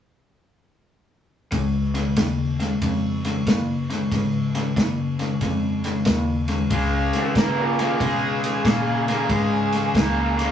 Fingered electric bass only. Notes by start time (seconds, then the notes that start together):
1.52 C#2
2.17 D#2
2.82 F2
3.47 F#2
4.12 G#2
4.76 F#2
5.41 F2
6.06 D#2
6.71 C#2
7.35 C#3
8.00 B2
8.65 A#2
9.29 G#2
9.95 C#2